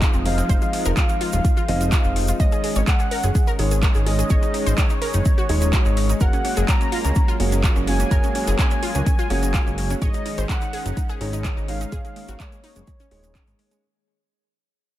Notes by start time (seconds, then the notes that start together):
Already playing: F3 G#3 C4 D#4 F4 G#4 D#5
0.02 D#4, kick, clap, closed hi-hat, shaker
0.13 F1 C4, shaker
0.25 F3 C4 D#4 F4 G#4 D#5 F5, open hi-hat
0.38 C4, closed hi-hat, shaker
0.49 F1 F3 C4 D#4 F4 G#4 C5 D#5, kick, closed hi-hat, shaker
0.62 F4, closed hi-hat, shaker
0.73 F4, open hi-hat
0.85 F1 A#4, closed hi-hat, shaker
0.97 F4 F5, kick, clap, closed hi-hat, shaker
1.09 F4, closed hi-hat, shaker
1.21 F4, open hi-hat
1.33 D#1 F4, closed hi-hat, shaker
1.45 F4, kick, closed hi-hat, shaker
1.57 F4, shaker
1.68 F1 F3 C4 D#4 F4 G#4 D#5, open hi-hat
1.81 F4, closed hi-hat, shaker
1.92 F4, kick, clap, closed hi-hat, shaker
2.04 F1 F4, shaker
2.16 F4, open hi-hat
2.28 F4, closed hi-hat, shaker
2.40 G#1 D#3 G#3 C#4 D#4 G#4 C#5 D#5, kick, closed hi-hat, shaker
2.52 G#4, closed hi-hat, shaker
2.64 G#4, open hi-hat
2.75 G#1 C#5, closed hi-hat, shaker
2.87 G#4 F#5, kick, clap, closed hi-hat, shaker
2.99 G#4, closed hi-hat, shaker
3.11 A#4, open hi-hat
3.23 F#1 G#4, closed hi-hat, shaker
3.35 G#4, kick, closed hi-hat, shaker
3.47 A#4, shaker
3.59 G#1 G#3 D#4 G#4 C#5, open hi-hat
3.71 G#4, closed hi-hat, shaker
3.82 A#4, kick, clap, closed hi-hat, shaker
3.95 G#1 G#4, shaker
4.06 G#3 D#4 G#4 C#5 D#5, open hi-hat
4.19 G#4, closed hi-hat, shaker
4.30 G#1 G#3 D#4 G#4 C#5, kick, closed hi-hat, shaker
4.42 D#4, closed hi-hat, shaker
4.54 D#4, open hi-hat
4.66 G#1 C5, closed hi-hat, shaker
4.78 D#4 C#5, kick, clap, closed hi-hat, shaker
4.90 D#4, closed hi-hat, shaker
5.01 A#4, open hi-hat
5.13 F#1 D#4, closed hi-hat, shaker
5.25 D#4, kick, closed hi-hat, shaker
5.38 F#4, shaker
5.49 D#1 G#3 D#4 G#4 C#5, open hi-hat
5.62 D#4, closed hi-hat, shaker
5.73 F#4, kick, clap, closed hi-hat, shaker
5.86 G#1 D#4, shaker
5.97 D#4, open hi-hat
6.09 D#4, closed hi-hat, shaker
6.20 F#1 F#3 A#3 C#4 F#4 G#4 A#4 C#5 F#5, kick, closed hi-hat, shaker
6.33 C#4, closed hi-hat, shaker
6.45 C#4, open hi-hat
6.57 F#1 G#4, closed hi-hat, shaker
6.68 C#4 A#5, kick, clap, closed hi-hat, shaker
6.81 C#4, closed hi-hat, shaker
6.92 F4, open hi-hat
7.05 C#2 C#4, closed hi-hat, shaker
7.15 C#4, kick, closed hi-hat, shaker
7.28 F4, shaker
7.40 F#1 A#3 C#4 F#4 G#4 C#5, open hi-hat
7.52 C#4, closed hi-hat, shaker
7.63 F4, kick, clap, closed hi-hat, shaker
7.76 F#1 C#4, shaker
7.87 A#3 C#4 F#4 G#4 C#5 G#5, open hi-hat
8.00 C#4, closed hi-hat, shaker
8.11 F#1 A#3 C#4 F#4 G#4 A#4 C#5, kick, closed hi-hat, shaker
8.24 C#4, closed hi-hat, shaker
8.35 C#4, open hi-hat
8.47 F#1 G#4, closed hi-hat, shaker
8.59 C#4 G#5, kick, clap, closed hi-hat, shaker
8.71 C#4, closed hi-hat, shaker
8.83 F4, open hi-hat
8.95 C#2 C#4, closed hi-hat, shaker
9.06 C#4, kick, closed hi-hat, shaker
9.19 F4, shaker
9.30 F#1 A#3 C#4 F#4 G#4 C#5, open hi-hat
9.43 C#4, closed hi-hat, shaker
9.54 F4, kick, clap, closed hi-hat, shaker
9.66 F#1 C#4, shaker
9.78 C#4, open hi-hat
9.90 C#4, closed hi-hat, shaker
10.02 G#1 D#3 G#3 C#4 D#4 G#4 C#5 D#5, kick, closed hi-hat, shaker
10.14 D#4, closed hi-hat, shaker
10.26 D#4, open hi-hat
10.38 G#1 C5, closed hi-hat, shaker
10.49 D#4 F#5, kick, clap, closed hi-hat, shaker
10.61 D#4, closed hi-hat, shaker
10.73 G#4, open hi-hat
10.86 F#1 D#4, closed hi-hat, shaker
10.97 D#4, kick, closed hi-hat, shaker
11.09 G#4, shaker
11.21 G#1 G#3 D#4 G#4 C#5, open hi-hat
11.33 D#4, closed hi-hat, shaker
11.45 G#4, kick, clap, closed hi-hat, shaker
11.57 G#1 D#4, shaker
11.68 G#3 D#4 G#4 C#5 F5, open hi-hat
11.81 D#4, closed hi-hat, shaker
11.92 G#1 G#3 A#3 D#4 G#4 C#5, kick, closed hi-hat, shaker
12.05 G#3, closed hi-hat, shaker
12.16 G#3, open hi-hat
12.28 G#1 F#4, closed hi-hat, shaker
12.40 G#3 C#5, kick, clap, closed hi-hat, shaker
12.52 G#3, closed hi-hat, shaker
12.64 D#4, open hi-hat
12.76 F#1 G#3, closed hi-hat, shaker
12.87 G#3, kick, closed hi-hat, shaker
13.00 C#4, closed hi-hat, shaker
13.11 D#1 G#3 D#4 G#4 C#5, open hi-hat
13.24 G#3, closed hi-hat, shaker
13.35 C#4, kick, clap, closed hi-hat, shaker
13.47 G#1 G#3, closed hi-hat, shaker
13.59 G#3, open hi-hat
13.71 G#3, closed hi-hat, shaker